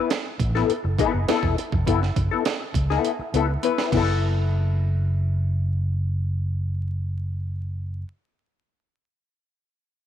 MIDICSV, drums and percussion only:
0, 0, Header, 1, 2, 480
1, 0, Start_track
1, 0, Key_signature, 3, "minor"
1, 0, Tempo, 587084
1, 1529, Time_signature, 4, 2, 24, 8
1, 8231, End_track
2, 0, Start_track
2, 0, Title_t, "Drums"
2, 85, Note_on_c, 9, 42, 82
2, 88, Note_on_c, 9, 38, 108
2, 166, Note_off_c, 9, 42, 0
2, 170, Note_off_c, 9, 38, 0
2, 323, Note_on_c, 9, 36, 95
2, 326, Note_on_c, 9, 42, 68
2, 405, Note_off_c, 9, 36, 0
2, 408, Note_off_c, 9, 42, 0
2, 453, Note_on_c, 9, 38, 32
2, 535, Note_off_c, 9, 38, 0
2, 570, Note_on_c, 9, 42, 87
2, 652, Note_off_c, 9, 42, 0
2, 806, Note_on_c, 9, 36, 101
2, 812, Note_on_c, 9, 42, 79
2, 888, Note_off_c, 9, 36, 0
2, 894, Note_off_c, 9, 42, 0
2, 1051, Note_on_c, 9, 42, 95
2, 1052, Note_on_c, 9, 38, 99
2, 1132, Note_off_c, 9, 42, 0
2, 1134, Note_off_c, 9, 38, 0
2, 1168, Note_on_c, 9, 36, 86
2, 1249, Note_off_c, 9, 36, 0
2, 1294, Note_on_c, 9, 42, 72
2, 1376, Note_off_c, 9, 42, 0
2, 1409, Note_on_c, 9, 36, 96
2, 1491, Note_off_c, 9, 36, 0
2, 1530, Note_on_c, 9, 36, 102
2, 1533, Note_on_c, 9, 42, 90
2, 1612, Note_off_c, 9, 36, 0
2, 1615, Note_off_c, 9, 42, 0
2, 1659, Note_on_c, 9, 38, 45
2, 1740, Note_off_c, 9, 38, 0
2, 1769, Note_on_c, 9, 36, 98
2, 1770, Note_on_c, 9, 42, 68
2, 1850, Note_off_c, 9, 36, 0
2, 1852, Note_off_c, 9, 42, 0
2, 2006, Note_on_c, 9, 42, 84
2, 2010, Note_on_c, 9, 38, 111
2, 2088, Note_off_c, 9, 42, 0
2, 2092, Note_off_c, 9, 38, 0
2, 2243, Note_on_c, 9, 36, 93
2, 2250, Note_on_c, 9, 42, 75
2, 2325, Note_off_c, 9, 36, 0
2, 2332, Note_off_c, 9, 42, 0
2, 2376, Note_on_c, 9, 38, 30
2, 2457, Note_off_c, 9, 38, 0
2, 2490, Note_on_c, 9, 42, 96
2, 2572, Note_off_c, 9, 42, 0
2, 2731, Note_on_c, 9, 42, 84
2, 2812, Note_off_c, 9, 42, 0
2, 2969, Note_on_c, 9, 42, 93
2, 3050, Note_off_c, 9, 42, 0
2, 3093, Note_on_c, 9, 38, 79
2, 3174, Note_off_c, 9, 38, 0
2, 3207, Note_on_c, 9, 36, 100
2, 3210, Note_on_c, 9, 49, 85
2, 3289, Note_off_c, 9, 36, 0
2, 3292, Note_off_c, 9, 49, 0
2, 8231, End_track
0, 0, End_of_file